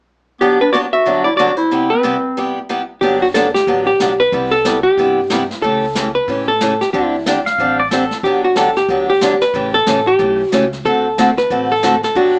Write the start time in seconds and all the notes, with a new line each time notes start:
0.40 G2 D3 F#3 B3 D4 G4
0.61 D4 B4
0.72 G2 D3 F#3 B3 D4 F#4 G4 D5
0.92 F#4 E5
1.06 G2 D3 F#3 B3 D4 G4
1.24 E4 D5
1.36 G2 D3 F#3 B3 F#4 D5
1.40 D4 G4
1.57 E4 C5
1.71 C3 G3 B3 E4 G4
1.90 C4 B4
2.03 C3 G3 B3 E4 G4
2.37 C3 G3 B3 E4 G4
2.69 C3 G3 B3 E4 G4
3.01 G1 D3 F#3 B3 D4 G4, brush sweep, kick
3.22 F#4
3.34 D3 F#3 B3 D4 G4 A4, snare, hi-hat pedal
3.54 G4, snare
3.67 A1 D3 F#3 B3 D4 G4, brush sweep, kick
3.87 G4
4.00 B1 D3 F#3 B3 D4 G4, snare, hi-hat pedal
4.20 B4
4.32 C2 C3 G3 B3 E4 G4, brush sweep, kick
4.51 A4
4.65 C3 G3 B3 E4 G4, snare, hi-hat pedal
4.83 G4
4.97 G2 C3 G3 B3 E4 G4, brush sweep, kick
5.30 C3 G3 B3 E4 G4, snare, hi-hat pedal
5.51 snare
5.62 C#2 C#3 E3 A3 C#4 G4 A4, brush sweep, kick
5.95 C#3 E3 A3 C#4 G4, snare, hi-hat pedal
6.15 B4
6.28 A2 C#3 E3 A3 C#4 G4, brush sweep, kick
6.48 A4
6.61 C#3 E3 A3 C#4 G4, snare, hi-hat pedal
6.81 G4, snare
6.93 D2 D3 G3 C4 D4 E4 G4, brush sweep, kick
7.26 D3 G3 C4 D4 G4, snare, hi-hat pedal
7.46 F5, snare
7.58 A1 D3 G3 C4 D4 G4, brush sweep, kick
7.80 D5
7.91 D3 G3 C4 D4 G4 A4, snare, hi-hat pedal
8.11 snare
8.23 G1 D3 F#3 B3 D4 G4, brush sweep, kick
8.44 F#4
8.56 D3 F#3 B3 D4 G4 A4, snare, hi-hat pedal
8.76 G4, snare
8.89 D2 D3 F#3 B3 D4 G4, brush sweep, kick
9.10 G4
9.21 D3 F#3 B3 D4 G4, snare, hi-hat pedal
9.41 B4, snare
9.54 A1 C#3 E3 A3 C#4 G4, brush sweep, kick
9.74 A4
9.86 A1 C#3 E3 A3 C#4 G4, snare, hi-hat pedal
10.07 G4
10.19 B1 C#3 E3 A3 C#4 G4, brush sweep, kick
10.50 C#2 C#3 E3 A3 C#4 F#4 G4, snare, hi-hat pedal
10.73 snare
10.85 D2 D3 A3 C4 F#4 A4, brush sweep, kick
11.18 D3 A3 C4 F#4 A4, snare, hi-hat pedal
11.38 B4, snare
11.50 A1 D3 A3 C4 F#4 A4, brush sweep, kick
11.72 A4
11.83 D3 A3 C4 F#4 A4, snare, hi-hat pedal
12.03 A4, snare
12.15 G1 D3 F#3 B3 D4 F#4 G4, brush sweep, kick